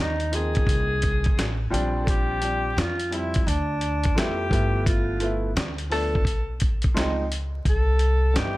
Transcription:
Already playing: upright bass D#2
0.00 alto saxophone D#4
0.20 closed hi-hat
0.32 grand piano F3 A#3 C4 D#4, alto saxophone G#4, closed hi-hat
0.55 kick, closed hi-hat
0.67 upright bass C2, kick, closed hi-hat
1.02 kick, closed hi-hat
1.24 kick, closed hi-hat
1.37 upright bass A1, snare, closed hi-hat
1.70 upright bass A#1, grand piano F3 G3 C4 D4, closed hi-hat
2.04 alto saxophone A4, kick
2.08 alto saxophone G4, closed hi-hat
2.41 grand piano F3 G3 C4 D4, closed hi-hat
2.77 upright bass F2, alto saxophone F4, snare, closed hi-hat
3.00 closed hi-hat
3.11 grand piano F3 G3 C4 E4, alto saxophone E4, closed hi-hat
3.34 kick, closed hi-hat
3.47 upright bass D2, alto saxophone D4, closed hi-hat
3.81 closed hi-hat
4.04 kick, closed hi-hat
4.15 upright bass F2, grand piano F3 A3 B3 E4, alto saxophone G4, snare, closed hi-hat
4.49 upright bass G1, grand piano F3 A3 B3 E4, kick, closed hi-hat
4.86 alto saxophone F4, kick, closed hi-hat
5.20 grand piano F3 A3 B3 E4, closed hi-hat
5.56 upright bass D2, snare, closed hi-hat
5.78 closed hi-hat
5.90 grand piano F3 A3 B3 D4, alto saxophone A4, open hi-hat
6.15 kick
6.25 upright bass B1, kick, closed hi-hat
6.60 kick, closed hi-hat
6.82 kick, closed hi-hat
6.94 upright bass C#2, grand piano F3 G#3 C4 D#4, snare, closed hi-hat
7.32 closed hi-hat
7.65 upright bass C2, alto saxophone A4, kick, closed hi-hat
7.99 closed hi-hat
8.34 upright bass G1, grand piano G3 B3 D4 D#4, alto saxophone G4, snare, closed hi-hat
8.44 grand piano E4

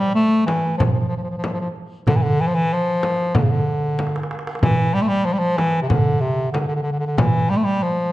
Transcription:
0.00 bass clarinet G3, darbuka ka
0.15 bass clarinet A3
0.46 bass clarinet E3, darbuka tek, frame drum
0.78 bass clarinet F3, darbuka dum, frame drum
0.85 bass clarinet F3
0.92 bass clarinet F3
1.00 bass clarinet F3
1.08 bass clarinet F3
1.17 bass clarinet F3
1.23 bass clarinet F3
1.30 bass clarinet F3
1.38 bass clarinet F3
1.44 bass clarinet F3, darbuka tek, frame drum
1.53 bass clarinet F3
1.60 bass clarinet F3
1.76 darbuka ka
2.07 bass clarinet D3, darbuka dum, frame drum
2.16 bass clarinet E3
2.22 bass clarinet D3
2.40 bass clarinet E3, darbuka ka
2.48 bass clarinet F3
2.55 bass clarinet E3, darbuka ka
2.73 bass clarinet F3
3.03 darbuka tek, frame drum
3.35 bass clarinet D3, frame drum, darbuka dum
3.42 bass clarinet C#3
3.50 bass clarinet D3
3.99 darbuka tek, frame drum
4.07 darbuka ka
4.16 darbuka tek
4.23 darbuka ka
4.31 darbuka tek
4.39 darbuka ka
4.47 darbuka tek
4.55 darbuka ka
4.62 bass clarinet E3, darbuka dum, frame drum
4.94 bass clarinet G3, darbuka ka
5.02 bass clarinet A3
5.08 bass clarinet G3
5.25 bass clarinet F3
5.33 bass clarinet G3
5.39 bass clarinet F3
5.57 bass clarinet E3, darbuka tek, frame drum
5.82 bass clarinet C3
5.89 bass clarinet D3, frame drum, darbuka dum
6.21 bass clarinet C3
6.52 bass clarinet D3, darbuka tek, frame drum
6.60 bass clarinet D3
6.67 bass clarinet D3, darbuka ka
6.75 bass clarinet D3
6.82 bass clarinet D3
6.91 bass clarinet D3
6.99 bass clarinet D3
7.07 bass clarinet D3
7.18 bass clarinet E3, darbuka dum, frame drum
7.50 bass clarinet G3, darbuka ka
7.57 bass clarinet A3
7.64 bass clarinet G3
7.83 bass clarinet F3

